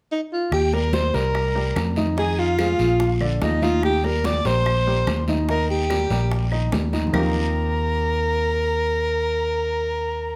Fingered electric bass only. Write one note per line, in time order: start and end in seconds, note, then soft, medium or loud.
0.52 1.10 D#2 medium
1.14 1.72 C2 medium
1.76 2.74 F2 medium
2.79 3.38 A#1 medium
3.42 4.39 D#2 medium
4.45 5.03 A#1 medium
5.07 6.04 D#2 medium
6.10 6.68 A#1 medium
6.72 7.09 D#2 medium
7.14 10.36 D#2 medium